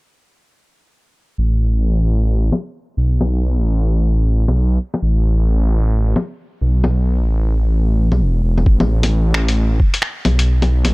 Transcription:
1.38 2.51 A1 medium
2.52 low bongo soft
2.97 3.58 B1 medium
3.21 low bongo medium
3.57 4.46 A1 medium
4.48 4.78 B1 medium
4.48 low bongo soft
4.94 low bongo soft
5.02 6.15 A1 medium
6.16 low bongo soft
6.61 7.22 B1 medium
6.84 low bongo medium
7.20 8.10 A1 medium
8.12 8.22 B1 medium
8.12 low bongo soft
8.20 8.42 E1 medium
8.44 8.65 E1 medium
8.58 low bongo soft
8.66 9.79 A1 medium
8.66 kick loud
8.80 low bongo medium
9.03 closed hi-hat medium
9.03 low bongo medium
9.34 finger snap loud
9.48 closed hi-hat medium
9.80 kick loud
9.94 closed hi-hat medium
10.02 finger snap medium
10.25 10.86 B1 medium
10.25 closed hi-hat soft
10.25 low bongo medium
10.39 closed hi-hat medium
10.62 closed hi-hat soft
10.62 low bongo medium
10.85 10.94 A1 medium
10.85 closed hi-hat medium
10.85 low bongo medium

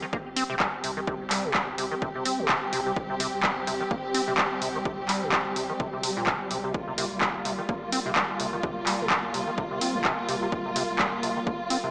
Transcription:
0.00 0.06 D#3 medium
0.00 11.91 G3 medium
0.00 6.70 C4 medium
0.00 6.73 G4 medium
0.13 0.17 A#3 medium
0.13 kick loud
0.26 0.35 G1 medium
0.36 0.44 C4 loud
0.36 open hi-hat loud
0.50 0.59 A#1 medium
0.50 0.55 C3 loud
0.60 0.67 G3 medium
0.60 kick loud
0.60 clap loud
0.84 1.04 C2 medium
0.84 0.91 C3 medium
0.84 open hi-hat medium
0.97 1.00 D#3 medium
1.07 1.41 C2 loud
1.07 1.15 C3 medium
1.07 kick loud
1.30 1.46 G3 medium
1.30 clap medium
1.30 open hi-hat loud
1.44 1.76 C2 medium
1.44 1.53 C3 medium
1.54 1.62 G3 medium
1.54 kick loud
1.54 clap loud
1.78 1.90 C2 loud
1.78 1.86 C3 medium
1.78 open hi-hat medium
1.92 1.95 D#3 medium
2.02 2.09 C3 medium
2.02 kick loud
2.15 2.24 G1 medium
2.15 2.24 C3 medium
2.25 2.40 C4 medium
2.25 open hi-hat loud
2.39 2.48 A#1 medium
2.39 2.47 C3 medium
2.49 2.56 C3 loud
2.49 kick loud
2.49 clap loud
2.73 2.93 C2 loud
2.73 2.80 C3 loud
2.73 open hi-hat medium
2.86 2.92 C3 medium
2.96 3.30 C2 loud
2.96 kick loud
3.10 3.15 C3 medium
3.20 3.27 C3 loud
3.20 open hi-hat loud
3.33 3.65 C2 medium
3.43 3.51 G3 medium
3.43 kick loud
3.43 clap loud
3.67 3.78 C2 loud
3.67 3.75 C3 medium
3.67 open hi-hat medium
3.81 3.84 D#3 medium
3.91 3.95 A#3 medium
3.91 kick loud
4.04 4.13 G1 medium
4.14 4.22 C4 loud
4.14 open hi-hat loud
4.28 4.36 A#1 medium
4.28 4.33 C3 loud
4.38 4.45 G3 medium
4.38 kick loud
4.38 clap loud
4.62 4.82 C2 loud
4.62 4.69 C3 medium
4.62 open hi-hat loud
4.75 4.78 D#3 medium
4.85 5.19 C2 loud
4.85 4.93 C3 medium
4.85 kick loud
5.08 5.24 G3 medium
5.08 clap medium
5.08 open hi-hat loud
5.22 5.54 C2 medium
5.22 5.31 C3 medium
5.32 5.40 G3 medium
5.32 kick loud
5.32 clap loud
5.56 5.68 C2 loud
5.56 5.63 C3 medium
5.56 open hi-hat medium
5.70 5.73 D#3 medium
5.80 5.87 C3 medium
5.80 kick loud
5.93 6.02 G1 medium
5.93 6.02 C3 medium
6.03 6.11 C3 medium
6.03 open hi-hat loud
6.17 6.26 A#1 medium
6.17 6.28 A#2 loud
6.27 6.38 C3 medium
6.27 kick loud
6.27 clap loud
6.51 6.71 C2 loud
6.51 6.58 C3 medium
6.51 open hi-hat medium
6.64 6.73 C3 medium
6.74 7.08 C2 loud
6.74 11.91 A#3 medium
6.74 11.91 F4 medium
6.74 kick loud
6.88 6.93 C3 medium
6.98 7.05 C3 loud
6.98 open hi-hat loud
7.11 7.43 C2 medium
7.21 7.29 G3 medium
7.21 kick loud
7.21 clap loud
7.45 7.57 C2 loud
7.45 7.53 C3 medium
7.45 open hi-hat medium
7.59 7.62 D#3 medium
7.69 7.73 A#3 medium
7.69 kick loud
7.82 7.91 G1 medium
7.92 8.00 C4 loud
7.92 open hi-hat loud
8.06 8.15 A#1 medium
8.06 8.11 C3 loud
8.16 8.23 G3 medium
8.16 kick loud
8.16 clap loud
8.40 8.60 C2 loud
8.40 8.47 C3 medium
8.40 open hi-hat medium
8.53 8.56 D#3 medium
8.63 8.97 C2 loud
8.63 8.71 C3 medium
8.63 kick loud
8.86 9.02 G3 medium
8.86 clap medium
8.86 open hi-hat loud
9.00 9.32 C2 medium
9.00 9.09 C3 medium
9.10 9.18 G3 medium
9.10 kick loud
9.10 clap loud
9.34 9.45 C2 loud
9.34 9.41 C3 medium
9.34 open hi-hat medium
9.47 9.51 D#3 medium
9.58 9.65 C3 medium
9.58 kick loud
9.71 9.80 G1 medium
9.71 9.80 C3 medium
9.81 9.96 C4 medium
9.81 open hi-hat loud
9.95 10.03 A#1 medium
9.95 10.03 C3 medium
10.04 10.12 C3 loud
10.04 kick loud
10.04 clap loud
10.29 10.49 C2 medium
10.29 10.36 C3 loud
10.29 open hi-hat medium
10.42 10.48 C3 medium
10.52 10.86 C2 loud
10.52 kick loud
10.66 10.71 C3 medium
10.76 10.83 C3 loud
10.76 open hi-hat loud
10.89 11.21 C2 medium
10.99 11.07 G3 medium
10.99 kick loud
10.99 clap loud
11.23 11.34 C2 loud
11.23 11.30 C3 medium
11.23 open hi-hat medium
11.37 11.40 D#3 medium
11.47 11.51 A#3 medium
11.47 kick loud
11.60 11.69 G1 medium
11.70 11.78 C4 loud
11.70 open hi-hat medium
11.84 11.91 A#1 medium
11.84 11.89 C3 loud

